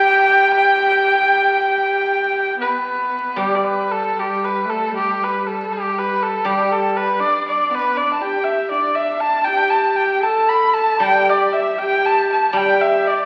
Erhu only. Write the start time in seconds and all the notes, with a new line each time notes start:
Already playing: G5
2.61 B4
3.38 G4
3.55 D5
3.64 B4
3.92 A4
4.19 G4
4.44 B4
4.70 A4
4.95 G4
5.23 B4
5.47 A4
5.73 G4
5.98 B4
6.23 A4
6.46 G4
6.71 A4
6.97 B4
7.20 D5
7.48 D5
7.75 B4
7.97 D5
8.13 A5
8.22 G5
8.44 E5
8.70 D5
8.95 E5
9.20 A5
9.44 G5
9.70 A5
9.96 G5
10.23 A5
10.49 B5
10.73 A5
11.03 G5
11.29 D5
11.53 E5
11.78 G5
12.06 A5
12.32 A5
12.57 G5
12.81 E5
13.07 D5